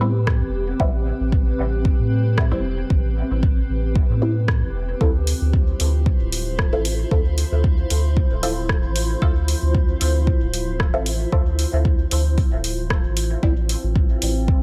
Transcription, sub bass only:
Already playing: A2
0.41 E1
0.80 A1
1.20 A1
1.59 A1
1.99 A2
2.52 E1
2.90 A1
3.30 A1
3.69 A1
4.09 A2
4.62 E1
5.01 D2
5.41 D2
5.80 D2
6.20 D1
6.73 A1
7.11 D2
7.52 D2
7.90 D2
8.31 D1
8.83 A1
9.22 D2
9.62 D2
10.01 D2
10.41 D1
10.94 A1
11.32 D2
11.73 D2
12.11 D2
12.52 D1
13.04 A1
13.43 A1
13.83 A1
14.22 A1

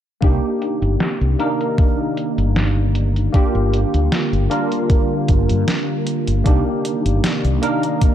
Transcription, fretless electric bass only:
0.23 C2
0.82 G1
1.21 C2
2.38 G1
3.55 G1
3.94 D2
4.33 G1
5.29 G1
5.50 G2
6.28 G1
6.46 C2
7.06 G1
7.45 C2

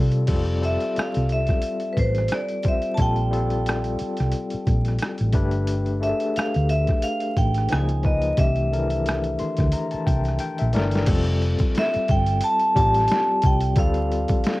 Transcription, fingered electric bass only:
Already playing: C3
0.30 F1
0.98 muted fingered electric bass stroke
1.17 C2
1.98 A1
2.99 A#1
4.01 muted fingered electric bass stroke
4.20 C2
4.54 muted fingered electric bass stroke
4.68 A#1
5.21 A1
5.35 G1
6.37 muted fingered electric bass stroke
6.56 D2
7.38 A1
7.73 C#2
8.39 C2
9.41 muted fingered electric bass stroke
9.60 D2
9.94 muted fingered electric bass stroke
10.08 C2
10.61 A#1
10.76 G1
11.09 F1
11.61 muted fingered electric bass stroke
11.96 muted fingered electric bass stroke
12.10 G1
12.77 A1
13.45 C2
13.78 D2
14.30 muted fingered electric bass stroke

